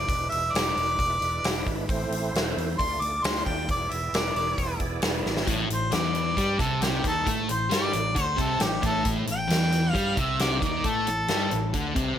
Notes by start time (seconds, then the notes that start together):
Already playing: D5
0.07 E1 G#3 D4 E4 B4, kick, open hi-hat
0.30 E1 E5, open hi-hat
0.52 E1 D5, snare, open hi-hat
0.76 E1, open hi-hat
0.99 E1, kick, open hi-hat
1.21 E1, open hi-hat
1.43 E1, snare, open hi-hat
1.66 G#1, kick, open hi-hat
1.88 A1 A3 C4 E4 C5, kick, open hi-hat
2.10 A1, open hi-hat
2.33 E1, snare, open hi-hat
2.56 E2, open hi-hat
2.77 D2 A3 D4 F4 D5 C6, kick, open hi-hat
3.01 D2 D6, open hi-hat
3.23 D2 C6, snare, open hi-hat
3.45 D#2 G5, kick, open hi-hat
3.69 E1 B3 E4 G#4 D5, kick, open hi-hat
3.91 E1 E5, open hi-hat
4.13 E1 D5, snare, open hi-hat
4.35 E1 D5, open hi-hat
4.58 E1, kick, open hi-hat
4.80 E1, kick, open hi-hat
5.02 E1, snare, open hi-hat
5.26 G#1, snare
5.37 snare
5.46 A1 A2, kick, closed hi-hat
5.70 A1 A2 C5, closed hi-hat
5.92 E2 E3 D5, snare, closed hi-hat
6.15 closed hi-hat
6.36 G2 G3, kick, closed hi-hat
6.59 C2 C3 A4, kick, closed hi-hat
6.82 G4, snare, closed hi-hat
7.04 D#2 D#3 A4, kick, closed hi-hat
7.26 A2 A3, kick, closed hi-hat
7.49 A1 A2 C5, closed hi-hat
7.69 G2 G3, snare, closed hi-hat
7.74 D5
7.93 A1 A2, closed hi-hat
8.15 D2 D3, kick, closed hi-hat
8.23 C5
8.37 C2 C3, kick, closed hi-hat
8.41 A4
8.60 A1 A2 G4, snare, closed hi-hat
8.82 A1 A2 A4, kick, closed hi-hat
9.04 A1 A2, kick, closed hi-hat
9.27 A1 A2, closed hi-hat
9.32 G5
9.48 E2 E3, snare, closed hi-hat
9.72 closed hi-hat
9.91 G2 G3 F5, kick
9.95 closed hi-hat
10.16 C2 C3 E5, kick, closed hi-hat
10.39 D5, snare, closed hi-hat
10.60 D#2 D#3 D5, kick, closed hi-hat
10.84 A2 A3 A4, kick, closed hi-hat
11.07 A1 A2, closed hi-hat
11.28 G2 G3, snare, closed hi-hat
11.51 A1 A2, closed hi-hat
11.74 D2 D3, kick, closed hi-hat
11.95 C2 C3, kick, closed hi-hat